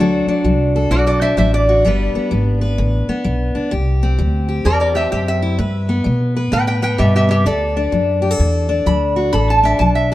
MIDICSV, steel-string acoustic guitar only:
0, 0, Header, 1, 2, 480
1, 0, Start_track
1, 0, Key_signature, 1, "major"
1, 0, Tempo, 467654
1, 1900, Time_signature, 4, 2, 24, 8
1, 10410, End_track
2, 0, Start_track
2, 0, Title_t, "Steel-string acoustic guitar"
2, 0, Program_c, 0, 25
2, 0, Note_on_c, 0, 50, 75
2, 0, Note_on_c, 0, 54, 64
2, 0, Note_on_c, 0, 62, 62
2, 1, Note_on_c, 0, 66, 58
2, 7, Note_on_c, 0, 69, 66
2, 288, Note_off_c, 0, 62, 0
2, 292, Note_on_c, 0, 62, 61
2, 425, Note_off_c, 0, 50, 0
2, 446, Note_off_c, 0, 54, 0
2, 458, Note_on_c, 0, 54, 65
2, 765, Note_off_c, 0, 69, 0
2, 777, Note_on_c, 0, 69, 64
2, 904, Note_off_c, 0, 54, 0
2, 939, Note_on_c, 0, 45, 67
2, 1233, Note_off_c, 0, 62, 0
2, 1246, Note_on_c, 0, 62, 66
2, 1385, Note_off_c, 0, 45, 0
2, 1406, Note_on_c, 0, 54, 62
2, 1721, Note_off_c, 0, 66, 0
2, 1733, Note_on_c, 0, 66, 59
2, 1858, Note_off_c, 0, 54, 0
2, 1879, Note_off_c, 0, 62, 0
2, 1883, Note_off_c, 0, 66, 0
2, 1885, Note_off_c, 0, 69, 0
2, 1895, Note_on_c, 0, 43, 77
2, 1903, Note_on_c, 0, 55, 68
2, 1914, Note_on_c, 0, 59, 68
2, 1920, Note_on_c, 0, 62, 56
2, 1927, Note_on_c, 0, 71, 72
2, 2197, Note_off_c, 0, 59, 0
2, 2209, Note_on_c, 0, 59, 62
2, 2343, Note_off_c, 0, 43, 0
2, 2367, Note_off_c, 0, 55, 0
2, 2371, Note_on_c, 0, 55, 64
2, 2670, Note_off_c, 0, 71, 0
2, 2683, Note_on_c, 0, 71, 69
2, 2821, Note_off_c, 0, 55, 0
2, 2856, Note_on_c, 0, 50, 67
2, 3158, Note_off_c, 0, 59, 0
2, 3170, Note_on_c, 0, 59, 70
2, 3303, Note_off_c, 0, 50, 0
2, 3330, Note_on_c, 0, 55, 67
2, 3631, Note_off_c, 0, 62, 0
2, 3643, Note_on_c, 0, 62, 59
2, 3780, Note_off_c, 0, 55, 0
2, 3798, Note_off_c, 0, 71, 0
2, 3802, Note_off_c, 0, 59, 0
2, 3811, Note_on_c, 0, 48, 77
2, 3817, Note_on_c, 0, 67, 62
2, 3819, Note_off_c, 0, 62, 0
2, 4135, Note_on_c, 0, 60, 62
2, 4261, Note_off_c, 0, 48, 0
2, 4295, Note_on_c, 0, 55, 62
2, 4600, Note_off_c, 0, 67, 0
2, 4604, Note_on_c, 0, 67, 69
2, 4743, Note_off_c, 0, 55, 0
2, 4771, Note_on_c, 0, 43, 66
2, 5067, Note_off_c, 0, 60, 0
2, 5079, Note_on_c, 0, 60, 69
2, 5221, Note_off_c, 0, 43, 0
2, 5567, Note_on_c, 0, 64, 60
2, 5716, Note_off_c, 0, 60, 0
2, 5720, Note_off_c, 0, 64, 0
2, 5733, Note_on_c, 0, 43, 84
2, 5737, Note_off_c, 0, 67, 0
2, 5741, Note_on_c, 0, 71, 60
2, 6044, Note_on_c, 0, 59, 58
2, 6183, Note_off_c, 0, 43, 0
2, 6201, Note_on_c, 0, 55, 63
2, 6521, Note_off_c, 0, 71, 0
2, 6533, Note_on_c, 0, 71, 64
2, 6656, Note_off_c, 0, 55, 0
2, 6689, Note_on_c, 0, 50, 67
2, 6990, Note_off_c, 0, 59, 0
2, 7002, Note_on_c, 0, 59, 67
2, 7140, Note_off_c, 0, 50, 0
2, 7177, Note_on_c, 0, 47, 66
2, 7480, Note_on_c, 0, 48, 65
2, 7484, Note_off_c, 0, 47, 0
2, 7637, Note_off_c, 0, 59, 0
2, 7643, Note_off_c, 0, 71, 0
2, 7652, Note_off_c, 0, 48, 0
2, 7656, Note_on_c, 0, 50, 76
2, 7663, Note_on_c, 0, 69, 65
2, 7972, Note_on_c, 0, 62, 65
2, 8103, Note_off_c, 0, 50, 0
2, 8131, Note_on_c, 0, 54, 61
2, 8432, Note_off_c, 0, 69, 0
2, 8436, Note_on_c, 0, 67, 67
2, 8526, Note_off_c, 0, 67, 0
2, 8526, Note_on_c, 0, 69, 59
2, 8580, Note_off_c, 0, 54, 0
2, 8618, Note_on_c, 0, 45, 67
2, 8914, Note_off_c, 0, 62, 0
2, 8918, Note_on_c, 0, 62, 65
2, 9064, Note_off_c, 0, 45, 0
2, 9097, Note_on_c, 0, 54, 66
2, 9404, Note_on_c, 0, 66, 61
2, 9543, Note_off_c, 0, 54, 0
2, 9558, Note_off_c, 0, 66, 0
2, 9572, Note_off_c, 0, 69, 0
2, 9574, Note_on_c, 0, 50, 79
2, 9585, Note_on_c, 0, 69, 72
2, 9884, Note_off_c, 0, 62, 0
2, 9888, Note_on_c, 0, 62, 63
2, 10021, Note_off_c, 0, 50, 0
2, 10068, Note_on_c, 0, 54, 67
2, 10367, Note_off_c, 0, 69, 0
2, 10410, Note_off_c, 0, 54, 0
2, 10410, Note_off_c, 0, 62, 0
2, 10410, End_track
0, 0, End_of_file